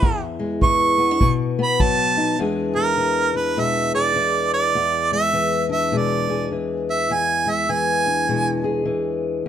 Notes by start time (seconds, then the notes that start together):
Already playing: E3 C#5
0.02 E2, kick
0.39 G#3
0.62 E3 C#6, kick
0.98 B3
1.11 D4
1.21 B2, kick
1.59 B3 B5
1.80 F#3 A5, kick
2.17 D#4
2.39 E2 E3 G#3 D4 G#4
2.75 G#3 A#4
2.97 E3
3.35 D4 B4
3.57 B2 G#3 E5
3.94 G#4 D5
4.16 E3
4.54 D5
4.75 E2
5.12 G#3 E5
5.33 E3
5.69 D4 E5
5.92 B2 G#3
5.97 D5
6.29 G#4
6.52 E3
6.90 E5
7.10 E2 G#5
7.46 G#3
7.50 E5
7.69 E3 G#5
8.06 D4
8.29 B2 G#3
8.64 G#4
8.85 E3